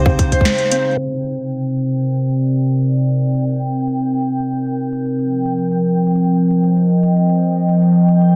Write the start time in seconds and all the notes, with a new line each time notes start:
Already playing: C#2 C#3 D#4 G4 C5 F5 G5
0.06 C4, kick, high bongo
0.19 kick, closed hi-hat
0.32 C5, kick, closed hi-hat
0.41 kick
0.45 snare, closed hi-hat
0.58 closed hi-hat
0.72 C4, closed hi-hat
0.98 C3 G5
1.08 C4
1.24 closed hi-hat
1.37 closed hi-hat
1.44 A#4
1.51 closed hi-hat
1.64 closed hi-hat
1.77 closed hi-hat
1.90 D5, closed hi-hat
2.03 closed hi-hat
2.16 closed hi-hat
2.30 closed hi-hat
2.43 closed hi-hat
2.56 closed hi-hat
2.69 closed hi-hat
2.82 closed hi-hat
2.95 closed hi-hat
3.08 closed hi-hat
3.22 closed hi-hat
3.35 closed hi-hat
3.48 closed hi-hat
3.61 closed hi-hat
3.74 closed hi-hat
3.87 closed hi-hat
4.00 closed hi-hat
4.14 closed hi-hat
4.27 closed hi-hat
4.40 closed hi-hat
4.53 closed hi-hat
4.66 closed hi-hat
4.73 closed hi-hat
4.93 closed hi-hat
5.06 closed hi-hat
5.19 F3, closed hi-hat
5.32 closed hi-hat
5.45 closed hi-hat
5.58 closed hi-hat
5.71 G5, closed hi-hat
5.85 closed hi-hat
5.98 closed hi-hat
6.07 closed hi-hat
6.11 closed hi-hat
6.15 closed hi-hat
6.24 closed hi-hat
6.32 D#5
6.37 closed hi-hat
6.40 closed hi-hat
6.43 closed hi-hat
6.45 closed hi-hat
6.48 closed hi-hat
6.51 closed hi-hat
6.64 closed hi-hat
6.77 closed hi-hat
6.90 closed hi-hat
7.03 closed hi-hat
7.16 closed hi-hat
7.29 closed hi-hat
7.43 closed hi-hat
7.69 closed hi-hat
7.82 closed hi-hat
7.95 closed hi-hat
8.08 closed hi-hat
8.22 closed hi-hat